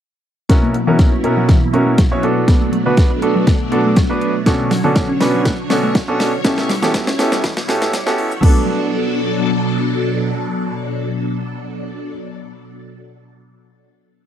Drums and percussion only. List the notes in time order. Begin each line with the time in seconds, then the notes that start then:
0.50 kick, snare, closed hi-hat
0.74 closed hi-hat
0.99 kick, snare, closed hi-hat
1.24 closed hi-hat
1.49 kick, snare, closed hi-hat
1.74 closed hi-hat
1.98 kick, snare, closed hi-hat
2.23 closed hi-hat
2.48 kick, snare, closed hi-hat
2.73 closed hi-hat
2.97 kick, snare, closed hi-hat
3.22 closed hi-hat
3.47 kick, snare, closed hi-hat
3.72 closed hi-hat
3.96 kick, snare, closed hi-hat
4.21 closed hi-hat
4.46 kick, snare, closed hi-hat
4.71 snare, open hi-hat
4.96 kick, snare, closed hi-hat
5.21 snare, open hi-hat
5.45 kick, snare, closed hi-hat
5.70 snare, open hi-hat
5.95 kick, snare, closed hi-hat
6.20 snare, open hi-hat
6.45 kick, snare, closed hi-hat, shaker
6.58 snare, shaker
6.69 snare, open hi-hat, shaker
6.83 snare, shaker
6.94 kick, snare, closed hi-hat, shaker
7.07 snare, shaker
7.19 snare, open hi-hat, shaker
7.32 snare, shaker
7.44 kick, snare, closed hi-hat, shaker
7.57 snare, shaker
7.69 snare, open hi-hat, shaker
7.82 snare, shaker
7.93 snare, closed hi-hat, shaker
8.07 snare, shaker
8.18 open hi-hat, shaker
8.31 shaker
8.43 kick, crash